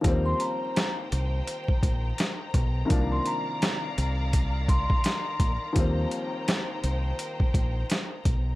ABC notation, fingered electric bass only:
X:1
M:4/4
L:1/16
Q:"Swing 16ths" 1/4=84
K:Eb
V:1 name="Fingered electric bass" clef=bass
E,,2 z4 C,,2 z2 B,,,2 z2 =B,,,2 | C,,2 z4 C,,4- C,, z3 B,,, z | E,,2 z4 C,,2 z2 B,,,2 z2 =B,,,2 |]